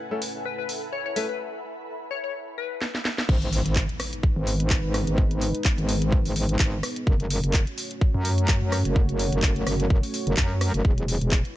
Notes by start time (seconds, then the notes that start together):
Already playing: A3 C#4 E4 A4 B4 C#5 F#5 G#5
0.08 A3 C#4 E4 A4 E5
0.22 open hi-hat
0.27 B5
0.45 B4
0.58 B4
0.69 open hi-hat
0.93 C#5
1.06 C#5
1.16 A3 C#4 E4 A4 B4, open hi-hat
1.29 B4
2.11 C#5
2.24 C#5
2.58 B4
2.82 snare
2.95 snare
3.05 snare
3.18 snare
3.29 G#1 G#3 B3 D#4 B4, kick, crash, impact
3.42 closed hi-hat
3.53 open hi-hat
3.66 G#1, closed hi-hat
3.76 kick, clap
3.89 closed hi-hat
4.00 cross-stick, open hi-hat
4.13 closed hi-hat
4.23 kick
4.36 G#1
4.47 open hi-hat
4.60 closed hi-hat
4.70 kick, clap
4.84 G#1
4.94 cross-stick, open hi-hat
5.07 G#1, closed hi-hat
5.18 kick
5.31 closed hi-hat
5.41 open hi-hat
5.55 closed hi-hat
5.65 kick, clap
5.78 G#1, closed hi-hat
5.89 open hi-hat
6.02 closed hi-hat
6.12 kick
6.25 G#1, open hi-hat
6.36 open hi-hat
6.49 closed hi-hat
6.59 G#1, kick, clap
6.83 cross-stick, open hi-hat
6.96 closed hi-hat
7.07 F#1 A3 C#4 F#4 C#5, kick
7.20 closed hi-hat
7.30 open hi-hat
7.44 F#1, closed hi-hat
7.54 kick, clap
7.67 closed hi-hat
7.78 open hi-hat
7.91 closed hi-hat
8.01 kick
8.14 F#2
8.25 open hi-hat
8.38 closed hi-hat
8.48 kick, clap
8.62 F#2
8.72 cross-stick, open hi-hat
8.85 F#1, closed hi-hat
8.96 kick
9.09 closed hi-hat
9.19 open hi-hat
9.32 F#1, closed hi-hat
9.42 kick, clap
9.56 closed hi-hat
9.67 F#1, cross-stick, open hi-hat
9.80 closed hi-hat
9.90 kick
10.03 open hi-hat
10.14 open hi-hat
10.27 F#1, closed hi-hat
10.37 F#2, kick, clap
10.61 cross-stick, open hi-hat
10.74 F#1, closed hi-hat
10.85 E1 G#3 B3 E4 B4, kick
10.98 closed hi-hat
11.08 open hi-hat
11.21 E1, closed hi-hat
11.31 kick, clap
11.45 closed hi-hat